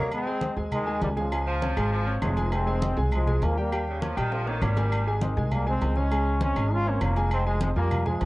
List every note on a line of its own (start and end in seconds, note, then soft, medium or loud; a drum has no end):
0.00 0.11 G3 medium
0.00 0.10 A#3 loud
0.11 0.55 G#3 medium
0.11 0.54 C4 loud
0.11 high conga soft
0.11 low agogo loud
0.11 claves medium
0.26 0.39 G#3 medium
0.26 0.39 G#4 medium
0.26 0.39 G#5 medium
0.26 high conga soft
0.41 0.54 C4 medium
0.41 0.54 C5 medium
0.41 0.54 D#5 medium
0.41 high conga loud
0.41 low timbale medium
0.41 low agogo medium
0.56 0.99 D#2 medium
0.56 0.81 G#3 medium
0.56 0.81 G#4 medium
0.56 0.82 G#5 medium
0.56 high conga soft
0.72 1.01 D#3 medium
0.72 1.00 G#3 loud
0.72 high conga soft
0.72 low conga medium
0.72 low agogo loud
0.72 claves medium
0.86 1.11 G#3 loud
0.86 1.11 G#4 medium
0.86 1.11 G#5 medium
0.86 high conga soft
1.01 1.71 C#2 loud
1.01 1.10 D#3 medium
1.01 1.09 G3 medium
1.01 high conga medium
1.01 low timbale medium
1.01 low agogo medium
1.16 1.45 C#3 medium
1.16 1.45 F3 medium
1.16 1.29 G#3 medium
1.16 1.29 G#4 loud
1.16 1.29 G#5 medium
1.16 high conga medium
1.32 1.57 G#3 medium
1.32 1.57 G#4 medium
1.32 1.57 G#5 medium
1.32 high conga soft
1.32 low agogo loud
1.32 claves medium
1.47 1.89 F3 loud
1.47 high conga soft
1.61 1.74 C4 medium
1.61 1.74 C5 medium
1.61 1.74 C#5 medium
1.61 high conga loud
1.61 low timbale medium
1.61 low agogo medium
1.77 2.19 G#1 medium
1.77 2.01 G#3 loud
1.77 2.01 G#4 medium
1.77 2.02 G#5 medium
1.77 low agogo loud
1.77 claves medium
1.92 2.13 F3 loud
1.92 high conga soft
2.06 2.19 C4 medium
2.06 2.19 C5 medium
2.06 2.19 C#5 medium
2.06 high conga soft
2.22 2.92 F1 medium
2.22 2.51 F3 medium
2.22 2.50 G#3 medium
2.22 2.34 C4 medium
2.22 2.34 C5 medium
2.22 2.34 C#5 medium
2.22 high conga medium
2.22 low timbale medium
2.22 low agogo loud
2.22 claves medium
2.36 2.61 G#3 medium
2.36 2.61 G#4 medium
2.36 2.62 G#5 loud
2.36 high conga medium
2.36 low agogo medium
2.52 2.98 G#3 medium
2.52 2.98 C4 loud
2.52 high conga soft
2.52 low agogo loud
2.52 claves medium
2.66 2.79 G#3 medium
2.66 2.79 G#4 medium
2.66 2.79 G#5 loud
2.66 high conga soft
2.82 2.94 C4 medium
2.82 2.94 C5 medium
2.82 2.94 D#5 medium
2.82 high conga loud
2.82 low timbale medium
2.82 low agogo medium
2.97 3.39 C2 medium
2.97 3.22 G#3 medium
2.97 3.22 G#4 medium
2.97 3.22 G#5 medium
2.97 high conga soft
3.12 3.41 F3 medium
3.12 3.41 G#3 medium
3.12 high conga soft
3.12 low conga medium
3.12 low agogo loud
3.12 claves medium
3.27 3.52 G#3 medium
3.27 3.52 G#4 medium
3.27 3.52 G#5 medium
3.27 high conga soft
3.27 low conga medium
3.42 4.11 D#2 loud
3.42 3.58 F3 medium
3.42 3.58 A#3 medium
3.42 high conga medium
3.42 low timbale medium
3.42 low agogo medium
3.57 3.69 G3 medium
3.57 3.86 G3 medium
3.57 3.86 A#3 medium
3.57 3.70 G4 medium
3.57 3.70 G5 medium
3.72 3.96 G3 medium
3.72 3.97 G4 medium
3.72 3.97 G5 medium
3.72 high conga soft
3.72 low agogo loud
3.72 claves medium
3.87 4.01 C#3 medium
3.87 high conga soft
4.02 4.17 F3 medium
4.02 4.14 A#3 medium
4.02 4.14 A#4 medium
4.02 4.15 C#5 medium
4.02 high conga loud
4.02 low timbale medium
4.02 low agogo medium
4.17 4.59 A#1 medium
4.17 4.32 D#3 loud
4.17 4.41 G3 medium
4.17 4.42 G4 medium
4.17 4.42 G5 medium
4.17 low agogo loud
4.17 claves medium
4.32 4.47 F3 loud
4.32 high conga soft
4.32 high timbale medium
4.47 4.62 D#3 medium
4.47 4.59 A#3 medium
4.47 4.59 A#4 medium
4.47 4.59 C#5 medium
4.47 high conga soft
4.47 high timbale medium
4.62 5.31 G#1 medium
4.62 5.14 G3 medium
4.62 4.74 A#3 medium
4.62 4.74 A#4 medium
4.62 4.75 C#5 medium
4.62 high conga medium
4.62 low timbale medium
4.62 low agogo loud
4.62 claves medium
4.77 5.01 A#3 medium
4.77 5.01 A#4 medium
4.77 5.02 G#5 medium
4.77 high conga medium
4.77 low timbale medium
4.77 low agogo medium
4.92 high conga soft
4.92 low agogo loud
4.92 claves medium
5.07 5.19 G#3 medium
5.07 5.19 G#4 medium
5.07 5.20 G#5 medium
5.07 high conga soft
5.21 5.51 D#3 medium
5.21 5.50 G#3 medium
5.21 5.34 C4 medium
5.21 5.34 C5 medium
5.21 5.35 D#5 medium
5.21 high conga loud
5.21 low timbale medium
5.21 low agogo medium
5.37 5.79 C2 medium
5.37 5.62 G#3 medium
5.37 5.62 G#4 medium
5.37 5.62 G#5 medium
5.37 high conga soft
5.51 5.68 G3 medium
5.51 5.67 A#3 loud
5.51 high conga soft
5.51 low conga medium
5.51 low agogo loud
5.51 claves medium
5.66 5.91 G#3 loud
5.66 5.96 G#3 medium
5.66 5.95 C4 loud
5.66 5.91 G#4 medium
5.66 5.91 G#5 medium
5.66 high conga soft
5.81 6.51 C#2 loud
5.81 high conga medium
5.81 low timbale medium
5.81 low agogo medium
5.96 6.09 G#3 medium
5.96 6.42 G#3 medium
5.96 6.42 C#4 loud
5.96 6.09 G#4 medium
5.96 6.09 G#5 medium
5.96 high conga medium
6.11 6.36 G#3 medium
6.11 6.36 G#4 medium
6.11 6.36 G#5 medium
6.11 high conga soft
6.11 low agogo loud
6.11 claves medium
6.26 high conga soft
6.41 6.70 G#3 medium
6.41 6.54 C4 medium
6.41 6.70 C#4 loud
6.41 6.54 C5 medium
6.41 6.54 C#5 medium
6.41 high conga loud
6.41 low timbale medium
6.41 low agogo medium
6.56 6.98 G#1 medium
6.56 6.81 G#3 medium
6.56 6.82 G#4 medium
6.56 6.82 G#5 medium
6.56 low agogo loud
6.56 claves medium
6.71 6.86 C#4 loud
6.71 6.87 F4 loud
6.71 high conga soft
6.86 7.01 A#3 medium
6.86 6.99 C4 medium
6.86 7.02 C#4 loud
6.86 6.99 C5 medium
6.86 6.99 C#5 medium
6.86 high conga soft
7.01 7.71 F1 medium
7.01 7.30 F3 medium
7.01 7.30 A#3 medium
7.01 7.14 C4 medium
7.01 7.14 C5 medium
7.01 7.14 C#5 medium
7.01 high conga medium
7.01 low timbale medium
7.01 low agogo loud
7.01 claves medium
7.16 7.41 G#3 medium
7.16 7.41 G#4 medium
7.16 7.41 G#5 medium
7.16 low agogo medium
7.31 7.46 G#3 medium
7.31 7.46 C4 loud
7.31 high conga soft
7.31 low agogo loud
7.31 claves medium
7.46 7.61 F3 medium
7.46 7.58 G#3 loud
7.46 7.61 G#3 medium
7.46 7.59 G#4 medium
7.46 7.59 G#5 medium
7.46 high conga soft
7.61 7.69 F3 medium
7.61 7.69 G#3 medium
7.61 7.74 C4 medium
7.61 7.74 C5 medium
7.61 7.74 D#5 medium
7.61 high conga loud
7.61 low timbale medium
7.61 low agogo medium
7.76 8.18 F2 medium
7.76 8.01 F3 medium
7.76 8.05 G3 medium
7.76 8.04 A#3 medium
7.76 8.01 F4 medium
7.76 8.01 G#5 medium
7.76 high conga soft
7.91 high conga soft
7.91 low conga medium
7.91 low agogo loud
7.91 claves medium
8.06 8.25 F3 medium
8.06 8.25 G#3 medium
8.06 8.25 G#4 medium
8.06 8.25 G#5 medium
8.06 high conga soft
8.06 low conga medium
8.21 8.25 D#2 medium
8.21 high conga medium
8.21 low timbale loud
8.21 low agogo medium